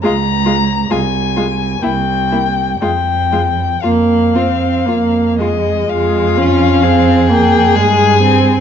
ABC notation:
X:1
M:3/4
L:1/8
Q:1/4=64
K:Fm
V:1 name="Violin"
b2 a2 g2 | g2 f3 e | f3 g a2 |]
V:2 name="Violin"
F F F F =E E | F F F F F F | F2 A4 |]
V:3 name="Viola"
A, A, A, A, B, B, | A, A, B, C B, A, | A, D C B, A, C |]
V:4 name="Cello" clef=bass
D,,2 C,,2 C,,2 | F,,2 F,,2 F,,2 | F,,4 G,,2 |]